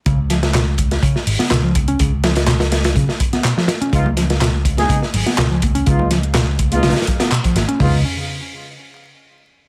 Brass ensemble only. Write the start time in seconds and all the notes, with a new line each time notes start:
3.93 G#3 B3 D#4 F4
4.78 G#3 B3 D#4 G#4
5.87 G#3 B3 D#4 F4
6.72 G#3 B3 D#4 F4
7.80 G#3 B3 D#4 F4